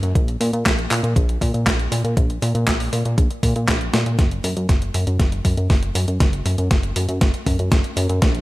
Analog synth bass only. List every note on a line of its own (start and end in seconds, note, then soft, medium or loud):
0.03 0.13 F#2 loud
0.15 0.37 A#1 loud
0.41 0.51 A#2 medium
0.53 0.64 A#2 loud
0.66 0.87 A#1 medium
0.91 1.02 A#2 medium
1.03 1.14 A#2 medium
1.16 1.38 A#1 loud
1.41 1.52 A#2 medium
1.54 1.65 A#2 medium
1.67 1.88 A#1 medium
1.92 2.02 A#2 loud
2.04 2.15 A#2 medium
2.17 2.38 A#1 loud
2.42 2.53 A#2 medium
2.55 2.66 A#2 loud
2.67 2.89 A#1 medium
2.93 3.03 A#2 medium
3.05 3.16 A#2 medium
3.18 3.29 A#1 medium
3.43 3.54 A#2 medium
3.56 3.67 A#2 medium
3.68 3.90 A#1 loud
3.94 4.04 A#2 medium
4.06 4.17 A#2 medium
4.19 4.40 F#1 loud
4.44 4.55 F#2 medium
4.57 4.67 F#2 loud
4.69 4.90 F#1 medium
4.95 5.05 F#2 loud
5.07 5.18 F#2 loud
5.20 5.41 F#1 loud
5.45 5.55 F#2 medium
5.57 5.68 F#2 medium
5.70 5.91 F#1 medium
5.95 6.06 F#2 loud
6.08 6.19 F#2 medium
6.20 6.42 F#1 loud
6.46 6.56 F#2 medium
6.58 6.69 F#2 loud
6.71 6.92 F#1 medium
6.96 7.07 F#2 medium
7.09 7.19 F#2 medium
7.21 7.32 F#1 medium
7.46 7.57 F#2 medium
7.59 7.70 F#2 medium
7.72 7.82 F#1 loud
7.97 8.07 F#2 loud
8.09 8.20 F#2 loud
8.22 8.41 A#1 loud